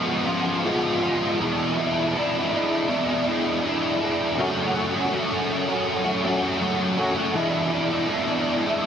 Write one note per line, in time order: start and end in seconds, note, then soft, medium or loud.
0.00 0.64 C#3 medium
0.00 0.64 F3 medium
0.00 0.27 G#3 medium
0.00 0.27 B3 loud
0.00 0.26 F4 loud
0.27 0.64 G#3 medium
0.27 0.65 B3 medium
0.27 0.66 F4 medium
0.65 1.37 F3 medium
0.65 1.04 G#3 medium
0.65 1.03 B3 medium
0.65 1.01 F4 medium
1.03 1.38 G#3 medium
1.03 1.38 B3 medium
1.03 1.37 F4 medium
1.40 2.14 E2 medium
1.40 2.14 B2 medium
1.40 1.77 E3 medium
1.40 1.77 G#3 medium
1.40 1.76 D4 medium
1.40 1.76 E4 medium
1.77 2.13 E3 medium
1.77 2.14 G#3 medium
1.77 2.15 D4 medium
1.77 2.15 E4 medium
2.14 2.52 E3 medium
2.14 2.51 G#3 medium
2.14 2.51 D4 medium
2.14 2.50 E4 medium
2.51 2.88 E3 medium
2.51 2.88 G#3 medium
2.51 2.89 D4 medium
2.51 2.89 E4 medium
2.88 3.63 E2 medium
2.88 3.63 B2 medium
2.88 3.27 E3 medium
2.88 3.27 G#3 medium
2.88 3.26 D4 medium
2.88 3.25 E4 medium
3.27 3.63 E3 medium
3.27 3.64 G#3 medium
3.27 3.64 D4 medium
3.27 3.65 E4 medium
3.64 4.01 E3 medium
3.64 4.01 G#3 medium
3.64 4.00 D4 medium
3.64 3.99 E4 medium
4.01 4.36 E3 medium
4.01 4.36 G#3 medium
4.01 4.36 D4 medium
4.01 4.35 E4 medium
4.38 5.10 F#2 medium
4.38 5.11 C#3 loud
4.38 4.73 F#3 medium
4.38 4.74 A3 medium
4.38 4.74 C#4 loud
4.38 4.75 F#4 loud
4.74 4.94 F#3 medium
4.74 4.93 A3 medium
4.74 4.93 C#4 medium
4.74 4.92 F#4 medium
4.93 5.11 F#3 medium
4.93 5.12 A3 medium
4.93 5.12 C#4 medium
4.93 5.13 F#4 medium
5.11 5.67 F#2 medium
5.11 5.68 C#3 medium
5.11 5.31 F#3 loud
5.11 5.30 A3 loud
5.11 5.30 C#4 loud
5.11 5.29 F#4 loud
5.30 5.68 F#3 medium
5.30 5.68 A3 medium
5.30 5.68 C#4 medium
5.30 5.67 F#4 medium
5.68 6.05 F#3 medium
5.68 6.04 A3 medium
5.68 6.04 C#4 medium
5.68 6.03 F#4 medium
6.05 6.23 F#3 medium
6.05 6.23 A3 medium
6.05 6.24 C#4 medium
6.05 6.24 F#4 medium
6.24 6.43 F#3 medium
6.24 6.42 A3 medium
6.24 6.42 C#4 medium
6.24 6.41 F#4 medium
6.42 6.60 F#3 medium
6.42 6.60 A3 medium
6.42 6.61 C#4 medium
6.42 6.61 F#4 medium
6.60 7.33 F#2 medium
6.60 7.33 C#3 medium
6.60 6.97 F#3 medium
6.60 6.97 A3 medium
6.60 6.97 C#4 medium
6.60 6.98 F#4 loud
6.98 7.17 F#3 medium
6.98 7.16 A3 medium
6.98 7.16 C#4 medium
6.98 7.15 F#4 loud
7.16 7.34 F#3 medium
7.16 7.33 A3 medium
7.16 7.33 C#4 medium
7.16 7.33 F#4 medium
7.35 8.07 E2 loud
7.35 8.07 B2 medium
7.35 7.71 E3 loud
7.35 7.71 G#3 medium
7.35 7.73 D4 medium
7.35 7.72 E4 loud
7.72 7.91 E3 medium
7.72 7.91 G#3 medium
7.72 7.91 D4 medium
7.72 7.89 E4 medium
7.91 8.07 E3 medium
7.91 8.08 G#3 medium
7.91 8.09 D4 medium
7.91 8.09 E4 medium
8.08 8.64 E2 medium
8.08 8.65 B2 medium
8.08 8.28 E3 medium
8.08 8.28 G#3 loud
8.08 8.28 D4 loud
8.08 8.26 E4 loud
8.28 8.66 E3 medium
8.28 8.65 G#3 medium
8.28 8.65 D4 medium
8.28 8.64 E4 medium
8.66 8.86 E3 medium
8.66 8.86 G#3 medium
8.66 8.86 D4 medium
8.66 8.86 E4 medium